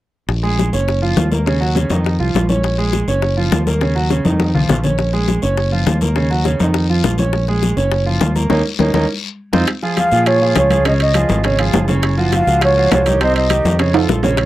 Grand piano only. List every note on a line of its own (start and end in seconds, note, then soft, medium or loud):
0.43 0.67 G#3 medium
0.43 0.68 G#4 medium
0.73 0.97 C#4 medium
0.73 0.97 C#5 medium
1.02 1.26 F3 medium
1.02 1.26 F4 medium
1.31 1.44 A#3 medium
1.31 1.44 A#4 medium
1.46 1.58 C#3 medium
1.46 1.58 C#4 medium
1.60 1.73 F#3 medium
1.60 1.73 F#4 medium
1.75 1.87 C#3 medium
1.75 1.88 C#4 medium
1.90 2.14 D#3 medium
1.90 2.15 D#4 medium
2.19 2.44 F3 medium
2.19 2.44 F4 medium
2.49 2.73 C#4 medium
2.49 2.73 C#5 medium
2.78 3.02 G#3 medium
2.78 3.03 G#4 medium
3.08 3.32 C#4 medium
3.08 3.32 C#5 medium
3.37 3.61 F3 medium
3.37 3.61 F4 medium
3.67 3.79 A#3 medium
3.67 3.79 A#4 medium
3.81 3.93 C#3 medium
3.81 3.93 C#4 medium
3.95 4.08 F#3 medium
3.95 4.08 F#4 medium
4.10 4.22 C#3 medium
4.10 4.23 C#4 medium
4.25 4.49 D#3 medium
4.25 4.49 D#4 medium
4.54 4.79 F3 medium
4.54 4.79 F4 medium
4.84 5.08 C#4 medium
4.84 5.08 C#5 medium
5.13 5.37 G#3 medium
5.13 5.37 G#4 medium
5.42 5.66 C#4 medium
5.42 5.66 C#5 medium
5.72 5.96 F3 medium
5.72 5.96 F4 medium
6.01 6.13 A#3 medium
6.01 6.13 A#4 medium
6.16 6.28 C#3 medium
6.16 6.28 C#4 medium
6.30 6.42 F#3 medium
6.30 6.43 F#4 medium
6.45 6.57 C#3 medium
6.45 6.57 C#4 medium
6.60 6.84 D#3 medium
6.60 6.84 D#4 medium
6.89 7.13 F3 medium
6.89 7.14 F4 medium
7.18 7.42 C#4 medium
7.18 7.43 C#5 medium
7.48 7.72 G#3 medium
7.48 7.72 G#4 medium
7.77 8.01 C#4 medium
7.77 8.01 C#5 medium
8.06 8.30 F3 medium
8.06 8.30 F4 medium
8.35 8.48 A#3 medium
8.35 8.48 A#4 medium
8.50 8.59 A#3 loud
8.50 8.59 C#4 loud
8.50 8.60 D#4 medium
8.79 8.89 A#3 medium
8.79 8.89 C#4 medium
8.79 8.89 D#4 medium
8.94 9.04 A#3 medium
8.94 9.04 C#4 medium
8.94 9.04 D#4 medium
9.53 9.62 C4 medium
9.53 9.62 D#4 medium
9.53 9.62 F4 medium
9.83 10.07 F3 medium
9.83 10.07 F4 medium
9.83 10.07 G#4 medium
10.12 10.36 F3 medium
10.12 10.36 F4 medium
10.12 10.36 G#4 medium
10.42 10.66 F3 medium
10.42 10.66 F4 medium
10.42 10.66 G#4 medium
10.71 10.83 F3 medium
10.71 10.83 F4 medium
10.71 10.83 G#4 medium
10.85 11.09 C#3 medium
10.85 11.09 C#4 medium
10.85 11.10 C#5 medium
11.15 11.39 F3 medium
11.15 11.39 F4 medium
11.15 11.39 G#4 medium
11.44 11.56 C#3 medium
11.44 11.57 C#4 medium
11.44 11.57 C#5 medium
11.59 11.83 F3 medium
11.59 11.83 F4 medium
11.59 11.83 G#4 medium
11.88 12.12 C#3 medium
11.88 12.12 C#4 medium
11.88 12.12 C#5 medium
12.17 12.42 F3 medium
12.17 12.42 F4 medium
12.17 12.42 F#4 medium
12.47 12.71 F3 medium
12.47 12.71 F4 medium
12.47 12.71 F#4 medium
12.77 13.01 F3 medium
12.77 13.01 F4 medium
12.77 13.01 F#4 medium
13.06 13.18 D#3 medium
13.06 13.18 D#4 medium
13.06 13.18 G4 medium
13.20 13.45 C3 medium
13.20 13.45 C4 medium
13.20 13.45 C5 medium
13.50 13.74 D#3 medium
13.50 13.74 D#4 medium
13.50 13.75 G4 medium
13.79 13.91 C#3 medium
13.79 13.92 C#4 medium
13.79 13.92 C#5 medium
13.94 14.18 F3 medium
13.94 14.18 F4 medium
13.94 14.18 A4 medium
14.23 14.46 C#3 medium
14.23 14.46 C#4 medium
14.23 14.46 C#5 medium